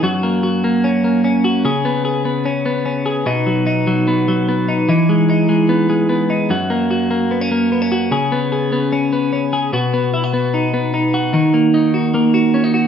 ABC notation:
X:1
M:4/4
L:1/16
Q:1/4=149
K:B
V:1 name="Clean electric guitar"
[F,,F]2 A,2 F2 A,2 C2 A,2 C2 F2 | [C,G]2 B,2 G2 B,2 C2 B,2 C2 G2 | [B,,D]2 F,2 D2 F,2 B,2 F,2 B,2 D2 | [E,D]2 G,2 D2 G,2 B,2 G,2 B,2 D2 |
[F,,F]2 A,2 F2 A,2 B, C A,2 B, C F2 | [C,G]2 B,2 G2 B,2 C2 B,2 C2 G2 | [B,,F]2 B,2 E F B,2 D2 B,2 D2 F2 | D,2 A,2 D2 F2 A,2 F2 C D F2 |]